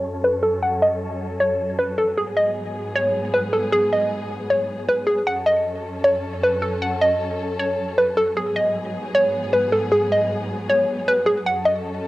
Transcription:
Already playing: F#2 F#3 C#4 A4 C#5
0.24 B4
0.43 A4
0.63 F#5
0.82 D#5
1.40 C#5
1.79 B4
1.98 A4
2.17 G#2 B3 G#4
2.37 D#5
2.95 C#5
3.34 B4
3.53 A4
3.72 G#4
3.93 D#5
4.50 C#5
4.89 B4
5.07 G#4
5.27 F#2 F#3 C#4 A4 F#5
5.46 D#5
6.04 C#5
6.43 B4
6.62 A4
6.82 F#5
7.01 D#5
7.59 C#5
7.98 B4
8.17 A4
8.37 G#2 B3 G#4
8.56 D#5
9.15 C#5
9.53 B4
9.72 A4
9.92 G#4
10.12 D#5
10.69 C#5
11.08 B4
11.26 G#4
11.46 F#2 C#4 A4 F#5
11.65 D#5

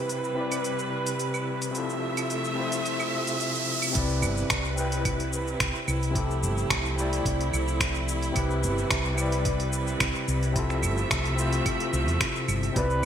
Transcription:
Already playing: C3 G3 C4 E4 G4 B4, riser
0.09 closed hi-hat, shaker
0.24 shaker
0.34 C3 C4 E4
0.39 G4 D5
0.52 closed hi-hat, claves, shaker
0.64 closed hi-hat, shaker
0.79 shaker
1.06 closed hi-hat, shaker
1.19 closed hi-hat, shaker
1.34 claves, shaker
1.62 closed hi-hat, shaker
1.71 C3 F3 A3 C4 E4 E5
1.75 F4 A4, closed hi-hat, shaker
1.90 shaker
2.17 closed hi-hat, claves, shaker
2.30 closed hi-hat, shaker
2.45 shaker
2.54 C3 C4 E4
2.59 F4 C5
2.72 closed hi-hat, shaker
2.85 closed hi-hat, shaker
3.00 claves, shaker
3.27 closed hi-hat, shaker
3.40 closed hi-hat, shaker
3.55 shaker
3.82 closed hi-hat, claves, shaker
3.91 C3 C4 E4
3.95 C2 C3 B4 D5, kick, closed hi-hat, shaker
4.10 shaker
4.22 G1, claves, shaker
4.37 shaker
4.50 C2, finger snap, kick, closed hi-hat, shaker
4.65 shaker
4.74 C3 C4 E4, shaker
4.79 B4 G5
4.92 closed hi-hat, shaker
5.05 kick, closed hi-hat, claves, shaker
5.20 closed hi-hat, shaker
5.33 shaker
5.47 shaker
5.60 C2, finger snap, kick, closed hi-hat, shaker
5.75 shaker
5.88 C2, claves, shaker
6.03 closed hi-hat, shaker
6.11 C3 F3 A3 C4 E4
6.15 G4 A4, kick, closed hi-hat, shaker
6.31 shaker
6.43 G1, shaker
6.58 shaker
6.70 C2, finger snap, kick, closed hi-hat, claves, shaker
6.86 shaker
6.94 C3 C4 E4
6.99 G4 D5, shaker
7.13 closed hi-hat, shaker
7.25 C2, kick, closed hi-hat, shaker
7.41 closed hi-hat, shaker
7.53 C2, claves, shaker
7.68 shaker
7.80 finger snap, kick, closed hi-hat, shaker
7.95 shaker
8.08 shaker
8.22 closed hi-hat, shaker
8.32 C3 G3 C4 E4 B4, kick
8.36 C2 G4 B4, closed hi-hat, claves, shaker
8.51 shaker
8.63 G1, shaker
8.78 shaker
8.91 C2, finger snap, kick, closed hi-hat, shaker
9.05 shaker
9.14 C3 C4 E4, claves, shaker
9.19 G4 D5
9.32 closed hi-hat, shaker
9.45 kick, closed hi-hat, shaker
9.60 closed hi-hat, shaker
9.73 shaker
9.87 shaker
10.00 C2, finger snap, kick, closed hi-hat, claves, shaker
10.15 shaker
10.28 C2, shaker
10.43 closed hi-hat, shaker
10.52 C3 F3 A3 C4 E4 E5, kick, closed hi-hat, shaker
10.57 F4 A4
10.70 finger snap, shaker
10.83 G1, claves, shaker
10.98 shaker
11.11 C2, finger snap, kick, closed hi-hat, shaker
11.25 closed hi-hat, shaker
11.34 C3 C4 E4, shaker
11.40 F4 C5
11.53 closed hi-hat, shaker
11.66 kick, closed hi-hat, claves, shaker
11.80 closed hi-hat, shaker
11.93 C2, shaker
12.08 E2, closed hi-hat, shaker
12.21 finger snap, kick, closed hi-hat, shaker
12.36 shaker
12.48 G1, claves, shaker
12.63 closed hi-hat, shaker
12.72 C2 C3 C4 E4 G4, kick
12.76 B4 D5, closed hi-hat, high bongo, shaker
12.90 shaker

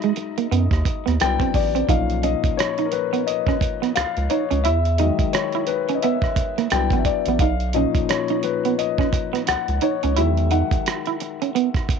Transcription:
Already playing: F#3 G#3 D#4 D#5 E5
0.02 G#3, closed hi-hat
0.16 muted clean electric guitar stroke, closed hi-hat
0.38 A#3, closed hi-hat
0.52 F#2 B3, closed hi-hat
0.71 D#2, kick, cross-stick, closed hi-hat
0.85 muted clean electric guitar stroke, kick, closed hi-hat
1.06 D#2 B3, cross-stick, closed hi-hat
1.20 C2 F#3 B3 D4 E4 G5, cross-stick, closed hi-hat
1.40 C4, kick, closed hi-hat
1.54 A1 D5, muted clean electric guitar stroke, kick, open hi-hat
1.75 C4, closed hi-hat
1.88 B1 A#2 F3 C#4 D#4 F5, kick, closed hi-hat
2.10 closed hi-hat
2.23 C#4 D#5, closed hi-hat
2.44 C#2, kick, closed hi-hat
2.57 C#5, cross-stick, closed hi-hat
2.78 D#4, closed hi-hat
2.85 A#4
2.92 B4, muted clean electric guitar stroke, closed hi-hat
3.13 B3, closed hi-hat
3.27 D#5, closed hi-hat
3.47 C#4, kick, cross-stick
3.61 muted clean electric guitar stroke, kick, closed hi-hat
3.82 B3, cross-stick, closed hi-hat
3.95 C#2 F5, muted clean electric guitar stroke, cross-stick, closed hi-hat
4.17 C#2, closed hi-hat
4.30 D#4 C#5, closed hi-hat
4.51 C#2 C#4, closed hi-hat
4.64 E2 E4 E5, closed hi-hat
4.85 closed hi-hat
4.98 D#3 F#3 G#3 D#4 D#5, closed hi-hat
5.19 C2, kick, closed hi-hat
5.33 C#5, cross-stick, closed hi-hat
5.53 E4, closed hi-hat
5.67 B4, muted clean electric guitar stroke, closed hi-hat
5.89 C#4, closed hi-hat
5.95 D#5
6.03 B3 E5, closed hi-hat
6.22 kick, cross-stick
6.36 muted clean electric guitar stroke, kick, closed hi-hat
6.58 A#3, cross-stick, closed hi-hat
6.70 C2 F#3 B3 D4 E4 G5, cross-stick, closed hi-hat
6.90 A1 B3, kick, closed hi-hat
6.99 E5
7.05 D5, muted clean electric guitar stroke, kick, closed hi-hat
7.26 A1 B3, closed hi-hat
7.39 B1 D#4 F5, kick, closed hi-hat
7.60 closed hi-hat
7.73 A#2 F3 C#4 D#4 D#5, closed hi-hat
7.95 C#2, kick, closed hi-hat
8.09 C#5, cross-stick, closed hi-hat
8.28 D#4, closed hi-hat
8.43 B4, muted clean electric guitar stroke, closed hi-hat
8.65 B3, closed hi-hat
8.79 D#5, closed hi-hat
8.98 C#4, kick, cross-stick
9.13 muted clean electric guitar stroke, kick, closed hi-hat
9.33 B3, cross-stick, closed hi-hat
9.47 C#2 F#5, muted clean electric guitar stroke, cross-stick, closed hi-hat
9.68 C#2, closed hi-hat
9.81 D#4 C#5, closed hi-hat
10.03 C#2 C#4, closed hi-hat
10.16 E2 D#3 F#3 G#3 E4 E5, closed hi-hat
10.37 closed hi-hat
10.51 D#4 F#5, closed hi-hat
10.71 C2, kick, closed hi-hat
10.86 cross-stick, closed hi-hat
11.06 E4, closed hi-hat
11.20 muted clean electric guitar stroke, closed hi-hat
11.42 C#4, closed hi-hat
11.55 B3, closed hi-hat
11.74 kick, cross-stick, closed hi-hat
11.89 muted clean electric guitar stroke, kick, closed hi-hat

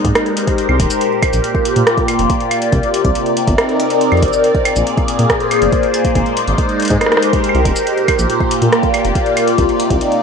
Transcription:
Already playing: G#3 D#4
0.05 G#2 G4 A#4 C5, kick, closed hi-hat
0.15 cross-stick, closed hi-hat, claves
0.26 closed hi-hat
0.37 closed hi-hat
0.47 kick, closed hi-hat
0.58 closed hi-hat
0.69 C2, claves
0.80 D#1, kick, closed hi-hat
0.90 closed hi-hat, cabasa
1.01 A#2, closed hi-hat
1.23 kick, closed hi-hat, claves
1.33 A#1, closed hi-hat, cabasa
1.40 A#3 F4, closed hi-hat
1.55 kick
1.65 closed hi-hat
1.76 A#2 D5, closed hi-hat
1.87 cross-stick, closed hi-hat
1.98 kick, closed hi-hat
2.08 closed hi-hat, claves
2.19 F1, closed hi-hat
2.30 kick, closed hi-hat
2.40 closed hi-hat
2.51 closed hi-hat, claves
2.62 closed hi-hat
2.72 C2 C3, kick, closed hi-hat
2.83 closed hi-hat
2.94 closed hi-hat
3.05 C2, kick, closed hi-hat
3.15 C4 A#4, closed hi-hat
3.26 closed hi-hat
3.37 closed hi-hat
3.47 G1 D#4, kick, closed hi-hat
3.58 cross-stick, closed hi-hat, claves
3.69 closed hi-hat
3.80 closed hi-hat
3.90 closed hi-hat
4.01 closed hi-hat
4.12 F2, closed hi-hat, claves
4.17 closed hi-hat
4.22 A#1, kick, closed hi-hat
4.33 cabasa
4.44 A#2, closed hi-hat
4.55 G#4, kick, closed hi-hat
4.60 A#3
4.65 closed hi-hat, claves
4.76 A#1, closed hi-hat, cabasa
4.87 closed hi-hat
4.97 kick, closed hi-hat
5.08 closed hi-hat
5.19 A#2 C5, closed hi-hat
5.30 kick, cross-stick, closed hi-hat
5.40 closed hi-hat
5.51 closed hi-hat, claves
5.54 claves
5.56 claves
5.59 F1, closed hi-hat, claves
5.72 kick, closed hi-hat
5.83 closed hi-hat
5.94 closed hi-hat, claves
6.05 kick, closed hi-hat
6.15 G#1 G#3, kick, closed hi-hat
6.26 closed hi-hat
6.37 D#4, closed hi-hat
6.47 G#1, closed hi-hat
6.58 kick, closed hi-hat
6.69 closed hi-hat
6.80 closed hi-hat
6.82 closed hi-hat
6.85 closed hi-hat
6.88 closed hi-hat
6.90 G#2 G4 A#4, kick, closed hi-hat
7.01 cross-stick, closed hi-hat, claves
7.06 cross-stick
7.12 cross-stick, closed hi-hat
7.17 cross-stick
7.22 closed hi-hat
7.33 kick, closed hi-hat
7.44 closed hi-hat
7.49 claves
7.55 C2, closed hi-hat
7.65 D#1, kick, closed hi-hat
7.76 closed hi-hat, cabasa
7.87 A#2, closed hi-hat
7.98 closed hi-hat
8.02 F4
8.08 kick, closed hi-hat, claves
8.19 A#1, closed hi-hat, cabasa
8.27 A#3, closed hi-hat
8.40 kick
8.51 closed hi-hat
8.62 A#2 D5, closed hi-hat
8.72 cross-stick, closed hi-hat
8.83 kick, closed hi-hat
8.94 closed hi-hat, claves
9.05 F1, closed hi-hat
9.15 kick, closed hi-hat
9.26 closed hi-hat
9.37 closed hi-hat, claves
9.48 closed hi-hat
9.58 C2 C3, kick, closed hi-hat
9.69 closed hi-hat
9.75 D#4
9.80 closed hi-hat
9.90 C2, kick, closed hi-hat
10.01 C4, closed hi-hat
10.12 closed hi-hat

